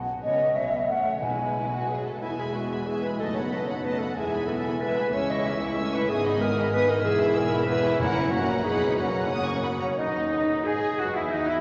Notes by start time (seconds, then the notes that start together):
0.23 C#2 C#3 B3 C#4 C#5 D#5
0.55 B1 B2 B3 C#4 C#5 E5
0.89 A1 A2 A3 C#4 C#5 F#5
1.22 B1 B2 G#3 E4 B4 G#5
1.58 E4
1.73 F#4
1.89 B1 B2 F#3 G#4 B4
2.06 A4
2.22 E1 E2 G#3 B3 E4 E5 G#5
2.38 G#3 G#4 G#5 B5
2.54 B3 F#4 E5 G#5
2.71 G#3 G#5 B5
2.86 G#3 B3 E4 G#4 E5 G#5
3.03 G#3 B4 G#5 B5
3.19 F#1 F#2 A3 B3 D#4 A4 D#5 A5
3.34 B3 C#5 F#5 B5
3.51 A3 B3 D#4 B4 D#5 A5
3.66 B3 C#5 F#5 B5
3.84 A3 B4 D#5 A5
3.98 B3 A4
4.02 F#5 B5
4.17 E1 E2 G#3 B3 E4 G#4 E5 G#5
4.34 B3 G#5 B5
4.47 G#3 A4 G#5
4.51 E5
4.66 B3 G#5 B5
4.80 G#3 B3 E4 B4 E5 G#5
4.97 B3 G#5 B5
5.13 C#2 G#3 C#4 E4 C#5 G#5 E6
5.30 E4 D#5 E5 C#6
5.45 G#3 C#4 E4 E5 G#5 E6
5.61 E4 E5 C#6
5.77 A3 C#4 G#5 E6
5.93 E4 B4 E5 C#6
6.09 G#1 G#2 B3 D#4 G#4 G#5 D#6
6.25 D#4 D#5 B5
6.41 B3 A#4 G#5 D#6
6.56 D#4 D#5 B5
6.71 B3 D#4 B4 G#5 D#6
6.88 D#4 A#4 D#5 B5
7.02 E1 E2 B3 E4 G#4 G#5 E6
7.21 E4 E5 B5
7.36 G#4 A#4 G#5 E6
7.53 E4 E5 B5
7.66 B3 E4 G#4 B4 G#5
7.70 E6
7.85 E4 E5 B5
7.99 F#1 F#2 A#3 C#4 E4 F#5 A#5
8.31 A#1 A#2 A#3 C#4 F#4 A#5
8.35 F#5
8.64 B1 B2 B3 D#4 G#4 F#5 B5
8.97 F#1 F#2 A#3 C#4 F#4 F#5 A#5
9.30 D#6
9.47 C#6
9.64 B5
9.81 C#4 C#5 A#5
9.97 D#2 D#4 D#5
10.31 B4
10.65 G#2 G#4 G#5
10.99 F#2 F#4 B4 F#5
11.15 E2 E4 E5
11.31 D#2 D#4 D#5
11.47 E2 E4 E5